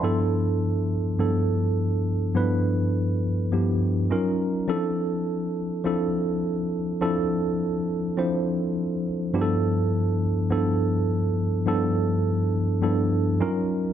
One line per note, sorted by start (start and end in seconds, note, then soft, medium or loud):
0.00 0.93 G2 medium
0.00 0.93 F3 medium
0.00 0.94 B3 medium
0.00 0.94 D4 medium
0.00 0.94 E4 medium
0.00 0.19 E5 soft
0.00 0.18 C6 medium
0.04 0.94 A4 medium
1.19 2.10 G2 medium
1.19 2.10 F3 medium
1.19 2.10 B3 medium
1.19 2.10 D4 medium
1.19 2.10 E4 medium
1.19 2.10 A4 medium
2.35 3.26 G2 medium
2.35 3.26 F3 medium
2.35 3.26 B3 medium
2.35 3.26 D4 medium
2.35 3.26 E4 medium
2.35 3.27 B4 medium
3.52 4.11 G2 medium
3.52 4.11 F3 medium
3.52 4.11 B3 medium
3.52 4.11 D4 medium
3.52 4.11 E4 medium
3.52 4.12 G4 medium
4.10 4.58 F#3 medium
4.10 4.58 C#4 medium
4.10 4.59 D#4 medium
4.10 4.59 F4 medium
4.10 4.59 A#4 loud
4.67 5.58 F3 medium
4.67 5.59 C4 medium
4.67 5.59 D4 medium
4.67 5.59 E4 medium
4.67 5.59 A4 medium
5.84 6.75 F3 medium
5.84 6.75 C4 medium
5.84 6.75 D4 medium
5.84 6.76 E4 medium
5.84 6.76 A4 medium
7.01 7.91 F3 medium
7.01 7.91 C4 medium
7.01 7.91 D4 medium
7.01 7.92 E4 medium
7.01 7.92 A4 loud
8.17 9.08 F3 medium
8.17 9.08 C4 medium
8.17 9.08 D4 medium
8.17 9.08 E4 medium
8.17 9.08 C5 medium
9.34 10.24 G2 medium
9.34 10.24 F3 medium
9.34 10.24 B3 medium
9.34 10.24 D4 medium
9.34 10.24 E4 medium
9.34 9.42 G4 medium
9.41 10.28 A4 loud
10.50 11.40 G2 medium
10.50 11.40 F3 medium
10.50 11.40 B3 medium
10.50 11.41 D4 medium
10.50 11.41 E4 medium
10.50 11.41 A4 medium
11.67 12.56 G2 medium
11.67 12.56 F3 medium
11.67 12.57 B3 medium
11.67 12.57 D4 medium
11.67 12.57 E4 medium
11.67 12.57 A4 loud
12.82 13.40 G2 medium
12.82 13.40 F3 medium
12.82 13.41 B3 medium
12.82 13.41 D4 medium
12.82 13.41 E4 medium
12.82 13.41 A4 medium
13.40 13.88 F#3 loud
13.40 13.88 C#4 medium
13.40 13.88 D#4 medium
13.40 13.88 F4 loud
13.40 13.89 A#4 loud